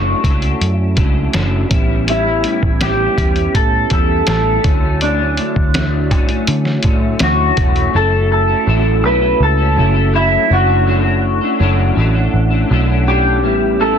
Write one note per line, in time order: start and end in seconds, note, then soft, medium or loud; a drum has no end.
0.00 0.13 F#1 medium
0.00 0.21 F#3 medium
0.00 1.65 A3 medium
0.00 0.22 C#4 medium
0.00 1.66 C#4 medium
0.00 0.23 D4 medium
0.00 1.67 E4 medium
0.00 0.76 F#4 medium
0.00 1.68 F#4 medium
0.00 0.24 A4 medium
0.22 0.53 C#2 medium
0.22 0.41 F#3 medium
0.22 0.42 C#4 medium
0.22 0.41 D4 medium
0.22 0.39 A4 medium
0.22 kick medium
0.22 closed hi-hat medium
0.40 0.96 C#4 soft
0.40 0.97 D4 soft
0.40 0.96 A4 medium
0.40 closed hi-hat soft
0.61 0.99 F#2 loud
0.61 closed hi-hat medium
0.76 1.66 E4 medium
0.96 1.27 C#2 medium
0.96 1.31 F#3 medium
0.96 1.32 C#4 medium
0.96 1.33 D4 medium
0.96 1.34 A4 medium
0.96 kick medium
0.96 closed hi-hat medium
1.33 1.64 F#1 medium
1.33 1.70 F#3 medium
1.33 1.70 C#4 medium
1.33 1.71 D4 medium
1.33 1.71 A4 medium
1.33 snare loud
1.33 closed hi-hat medium
1.69 2.44 A1 medium
1.69 1.88 A2 medium
1.69 1.89 G3 medium
1.69 4.59 B3 medium
1.69 4.60 C#4 medium
1.69 1.89 C#4 medium
1.69 4.61 E4 medium
1.69 kick loud
1.69 closed hi-hat medium
1.73 1.87 E4 medium
1.73 4.62 G4 medium
1.88 2.06 G3 soft
1.88 2.07 C#4 soft
1.88 2.07 E4 medium
2.06 2.25 A2 medium
2.06 2.26 G3 medium
2.06 2.25 C#4 medium
2.06 2.24 E4 medium
2.06 2.84 E4 medium
2.06 closed hi-hat medium
2.25 2.43 G3 soft
2.25 2.45 C#4 soft
2.25 2.44 E4 medium
2.43 2.78 A2 medium
2.43 2.80 G3 medium
2.43 2.80 C#4 medium
2.43 2.81 E4 medium
2.43 closed hi-hat medium
2.63 3.07 A1 loud
2.63 kick medium
2.80 3.15 A2 medium
2.80 3.17 G3 medium
2.80 3.18 C#4 medium
2.80 3.18 E4 medium
2.80 3.51 G4 loud
2.80 snare loud
2.80 closed hi-hat medium
3.17 3.47 E2 medium
3.17 3.35 A2 medium
3.17 3.36 G3 medium
3.17 3.36 C#4 medium
3.17 3.34 E4 medium
3.17 kick medium
3.17 closed hi-hat medium
3.35 3.90 G3 soft
3.35 3.91 C#4 soft
3.35 3.91 E4 soft
3.35 closed hi-hat soft
3.55 3.84 A2 medium
3.55 3.92 A4 loud
3.55 kick medium
3.55 closed hi-hat medium
3.90 4.21 E2 medium
3.90 4.26 A2 medium
3.90 4.27 G3 medium
3.90 4.27 C#4 medium
3.90 4.28 E4 medium
3.90 4.28 A4 medium
3.90 kick medium
3.90 closed hi-hat medium
4.27 4.57 A1 medium
4.27 4.64 A2 medium
4.27 4.64 G3 medium
4.27 4.65 C#4 medium
4.27 4.65 E4 medium
4.27 5.04 A4 loud
4.27 snare loud
4.27 closed hi-hat medium
4.62 5.38 D2 medium
4.62 4.82 D3 medium
4.62 4.83 F#3 medium
4.62 7.89 A3 medium
4.62 7.91 E4 medium
4.62 7.90 C#5 medium
4.62 kick loud
4.62 closed hi-hat medium
4.66 4.83 A3 medium
4.66 4.81 C#4 medium
4.66 4.72 F4 medium
4.74 7.95 F#4 medium
4.82 5.01 F#3 soft
4.82 5.02 A3 soft
4.82 5.01 C#4 medium
5.01 5.19 D3 medium
5.01 5.20 F#3 medium
5.01 5.20 A3 medium
5.01 5.18 C#4 medium
5.01 6.44 D4 medium
5.01 closed hi-hat medium
5.19 5.38 F#3 soft
5.19 5.39 A3 soft
5.19 5.38 C#4 medium
5.37 5.73 D3 medium
5.37 5.74 F#3 medium
5.37 5.75 A3 medium
5.37 closed hi-hat medium
5.56 6.11 D2 medium
5.56 kick medium
5.74 6.09 D3 medium
5.74 6.11 F#3 medium
5.74 6.12 A3 medium
5.74 snare medium
5.74 closed hi-hat medium
6.10 6.41 A2 medium
6.10 6.29 D3 medium
6.10 6.30 F#3 medium
6.10 6.29 A3 medium
6.10 kick medium
6.10 closed hi-hat medium
6.14 6.27 C#4 medium
6.28 6.83 F#3 soft
6.28 6.85 A3 soft
6.28 6.84 C#4 soft
6.28 closed hi-hat soft
6.47 6.77 D3 medium
6.47 closed hi-hat medium
6.65 snare soft
6.83 7.14 A2 medium
6.83 7.19 D3 medium
6.83 7.20 F#3 medium
6.83 7.21 A3 medium
6.83 7.01 D5 medium
6.83 kick medium
6.83 closed hi-hat medium
6.87 7.21 C#4 medium
7.02 7.19 E5 medium
7.19 7.50 D2 medium
7.19 7.55 D3 medium
7.19 7.57 F#3 medium
7.19 7.58 A3 medium
7.19 7.59 C#4 medium
7.19 7.96 F#4 medium
7.19 7.43 F#5 medium
7.19 snare loud
7.19 closed hi-hat medium
7.45 7.68 A5 medium
7.56 7.87 E1 medium
7.56 7.75 D3 medium
7.56 7.76 F#3 medium
7.56 7.76 A3 medium
7.56 7.73 C#4 medium
7.56 kick medium
7.56 closed hi-hat medium
7.69 7.92 B5 medium
7.75 7.92 F#3 soft
7.75 7.94 A3 medium
7.75 7.93 C#4 medium
7.75 closed hi-hat soft
7.91 8.53 F#1 medium
7.91 8.12 F#3 medium
7.91 10.46 A3 medium
7.91 10.46 C#4 medium
7.91 8.13 C#4 medium
7.91 10.47 E4 medium
7.91 8.12 E4 medium
7.96 10.48 F#4 medium
7.96 8.10 A4 medium
7.96 8.31 A4 medium
8.11 8.51 C#4 soft
8.11 8.49 E4 soft
8.11 8.47 A4 medium
8.32 9.05 A4 medium
8.48 8.66 C#4 soft
8.48 8.67 E4 soft
8.48 8.67 A4 soft
8.67 9.03 A1 medium
8.67 9.02 F#3 medium
8.67 9.03 C#4 medium
8.67 9.04 E4 medium
8.67 9.05 A4 medium
9.03 9.33 B1 medium
9.03 9.22 F#3 medium
9.03 9.23 C#4 medium
9.03 9.22 E4 medium
9.03 9.20 A4 medium
9.03 9.42 B4 medium
9.21 9.60 C#4 soft
9.21 9.58 E4 soft
9.21 9.56 A4 soft
9.40 9.79 C#2 medium
9.40 10.15 A4 loud
9.57 9.76 C#4 soft
9.57 9.77 E4 soft
9.57 9.77 A4 soft
9.75 10.36 F#1 medium
9.75 9.95 F#3 medium
9.75 9.96 C#4 medium
9.75 9.95 E4 medium
9.75 9.93 A4 medium
9.94 10.12 C#4 soft
9.94 10.14 E4 medium
9.94 10.13 A4 medium
10.13 10.48 F#3 medium
10.13 10.49 C#4 medium
10.13 10.51 E4 medium
10.13 10.53 E4 medium
10.13 10.52 A4 medium
10.48 11.39 F#1 medium
10.48 10.69 F#3 medium
10.48 13.39 A3 medium
10.48 13.40 C#4 medium
10.48 10.69 C#4 medium
10.48 10.68 D4 medium
10.48 13.41 E4 medium
10.53 11.95 F#4 medium
10.53 10.66 A4 medium
10.53 13.42 F#5 medium
10.67 10.86 C#4 soft
10.67 10.87 D4 soft
10.67 10.87 A4 medium
10.86 11.05 F#3 medium
10.86 11.06 C#4 medium
10.86 11.05 D4 medium
10.86 11.03 A4 medium
11.04 11.44 C#4 soft
11.04 11.42 D4 soft
11.04 11.40 A4 medium
11.41 11.59 C#4 soft
11.41 11.60 D4 soft
11.41 11.60 A4 soft
11.59 11.90 F#1 medium
11.59 11.94 F#3 medium
11.59 11.96 C#4 loud
11.59 11.97 D4 medium
11.59 11.98 A4 medium
11.95 12.27 A1 medium
11.95 12.15 F#3 medium
11.95 12.16 C#4 medium
11.95 12.15 D4 medium
11.99 12.13 A4 medium
12.14 12.53 C#4 soft
12.14 12.51 D4 medium
12.14 12.49 A4 soft
12.34 12.63 A1 medium
12.50 12.69 C#4 soft
12.50 12.70 D4 soft
12.50 12.70 A4 medium
12.69 13.44 B1 medium
12.69 12.88 F#3 medium
12.69 12.89 C#4 medium
12.69 12.89 D4 medium
12.69 12.87 A4 medium
12.88 13.06 C#4 medium
12.88 13.07 D4 medium
12.88 13.07 A4 medium
13.07 13.44 C#4 medium
13.07 13.45 D4 medium
13.07 13.83 G4 medium
13.07 13.45 A4 medium
13.42 13.98 A1 medium
13.42 13.78 A2 medium
13.42 13.79 G3 medium
13.42 13.98 B3 medium
13.42 13.98 C#4 medium
13.42 13.80 C#4 medium
13.42 13.98 E4 medium
13.42 13.81 E4 medium
13.47 13.98 G4 medium
13.79 13.98 A2 medium
13.79 13.98 G3 medium
13.79 13.98 C#4 medium
13.79 13.96 E4 medium
13.79 13.98 A4 loud